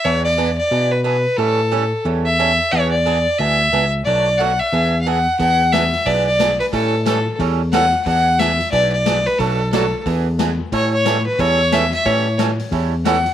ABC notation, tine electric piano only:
X:1
M:4/4
L:1/8
Q:"Swing" 1/4=180
K:Emix
V:1 name="Tine electric piano" clef=bass
E,,4 B,,4 | A,,4 E,,4 | E,,4 D,,2 C,,2 | B,,,4 E,,4 |
E,,4 B,,,4 | A,,4 E,,4 | E,,4 B,,,4 | B,,,4 E,,4 |
A,,4 E,,4 | A,,4 E,,4 |]